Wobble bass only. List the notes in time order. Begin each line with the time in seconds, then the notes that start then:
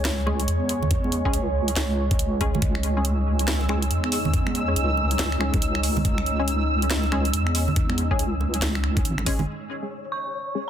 Already playing: C#2
0.48 E2
1.34 C#2
1.76 C#2
2.19 C#2
2.62 C#2
3.91 E2
4.76 C#2
5.19 C#2
5.62 C#2
6.05 C#2
7.33 E2
8.19 C#2
8.62 C#2
9.05 G#1